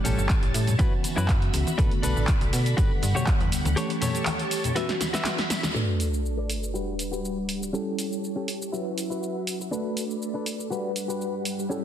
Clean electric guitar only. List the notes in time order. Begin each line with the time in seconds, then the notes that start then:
0.04 C#4 G4 A4
0.79 E4 F#4 B4
1.03 muted clean electric guitar stroke
1.16 E4 F#4 B4
1.66 muted clean electric guitar stroke
1.78 D4 A4 B4
2.02 D4 A4 B4
2.77 F#4 G4 B4
3.02 muted clean electric guitar stroke
3.15 F#4 G4 C#5
3.64 muted clean electric guitar stroke
3.76 G4 A4 C#5
4.01 G4 A4 C#5
4.75 F#4 B4 E5
5.00 muted clean electric guitar stroke
5.13 F#4 B4 E5
5.63 muted clean electric guitar stroke
5.75 A4 B4 D5
6.37 A4 B4 D5
6.62 muted clean electric guitar stroke
6.74 F#4 G4 B4
7.11 F#4 G4 B4
7.61 muted clean electric guitar stroke
7.73 C#4 G4 A4
8.36 C#4 G4 A4
8.60 muted clean electric guitar stroke
8.72 E4 F#4 B4
9.10 E4 F#4 B4
9.60 muted clean electric guitar stroke
9.71 D4 A4 B4
10.34 D4 A4 B4
10.59 muted clean electric guitar stroke
10.70 F#4 G4 B4
11.08 F#4 G4 B4
11.58 muted clean electric guitar stroke
11.69 C#4 G4 A4